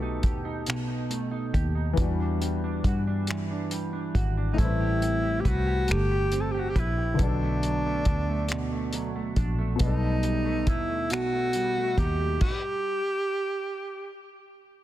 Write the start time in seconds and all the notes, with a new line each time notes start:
Already playing: B1 B2 A3 B3 D#4 F#4 G4 A4
0.02 D#4
0.23 D#2 G4, kick, closed hi-hat
0.45 D#4
0.66 B1 B2, finger snap, closed hi-hat
0.88 D#4
1.10 A3, closed hi-hat
1.31 D#4
1.54 D#2 G4, kick, closed hi-hat
1.75 D#4
1.93 E3 B3
1.97 E2 D4, kick, closed hi-hat
2.01 G3 F#4
2.20 D4
2.40 G3, closed hi-hat
2.64 D4
2.84 G2 F#4, kick, closed hi-hat
3.07 D4
3.27 E3, finger snap, closed hi-hat
3.51 D4
3.71 G3, closed hi-hat
3.93 D4
4.15 G#1 F#4, kick, closed hi-hat
4.37 D4
4.53 A2 A3 D#4
4.58 A1 A3 C4 E4, kick, closed hi-hat
4.62 G3 B4
4.81 G4
5.02 C4, closed hi-hat
5.23 G4
5.40 G4
5.45 C2 F#4 B4, kick, closed hi-hat
5.67 G4
5.88 G1 A3 G4, finger snap, closed hi-hat
6.11 G4
6.32 C4, closed hi-hat
6.41 A4
6.51 G4
6.60 F#4
6.70 G4
6.76 A#1 E4 B4, kick, closed hi-hat
6.98 G4
7.14 D3 B3
7.19 B1 B2 D4 F#4, kick, closed hi-hat
7.23 D4 A4
7.43 A3
7.63 F#3, closed hi-hat
7.86 A3
8.05 D2 D4, kick, closed hi-hat
8.29 A3
8.48 B2, finger snap, closed hi-hat
8.72 A3
8.93 F#3, closed hi-hat
9.16 A3
9.36 A#1 D4, kick, closed hi-hat
9.59 A3
9.76 B2 B3, closed hi-hat
9.80 B1 B2 G3 D#4 D#5, kick
9.87 A4
10.02 A3
10.23 G3, closed hi-hat
10.45 A3
10.67 D#2 D#4 E4, kick, closed hi-hat
10.89 A3
11.10 B1 B2 F#4, finger snap, closed hi-hat
11.32 A3
11.53 G3, closed hi-hat
11.77 A3
11.98 D#2 D#4 G4, kick, closed hi-hat
12.20 A3
12.41 G4, kick, crash